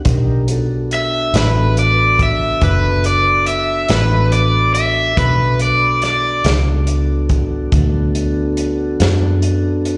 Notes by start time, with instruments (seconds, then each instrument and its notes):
0.05 fingered electric bass B1, tonewheel organ D4 D#4 G4 A#4, kick, closed hi-hat
0.48 tonewheel organ B3 D4 F#4 A4, closed hi-hat
0.91 overdriven electric guitar E5, closed hi-hat
1.34 fingered electric bass A1, overdriven electric guitar B4, snare, closed hi-hat
1.77 overdriven electric guitar D5, closed hi-hat
2.19 overdriven electric guitar E5, kick, closed hi-hat
2.61 fingered electric bass F#1, overdriven electric guitar B4, kick, closed hi-hat
3.04 overdriven electric guitar D5, closed hi-hat
3.46 overdriven electric guitar E5, closed hi-hat
3.89 fingered electric bass A1, overdriven electric guitar B4, snare, closed hi-hat
4.32 overdriven electric guitar D5, closed hi-hat
4.75 overdriven electric guitar E5, closed hi-hat
5.16 fingered electric bass B1, tonewheel organ B3 D4 F#4 A4, overdriven electric guitar B4, kick, closed hi-hat
5.59 overdriven electric guitar D5, closed hi-hat
6.02 overdriven electric guitar D5, snare, closed hi-hat
6.44 fingered electric bass C#2, snare, closed hi-hat
6.87 closed hi-hat
7.29 kick, closed hi-hat
7.72 fingered electric bass D2, kick, closed hi-hat
8.15 closed hi-hat
8.57 closed hi-hat
9.00 fingered electric bass F#2, snare, closed hi-hat
9.42 closed hi-hat
9.85 closed hi-hat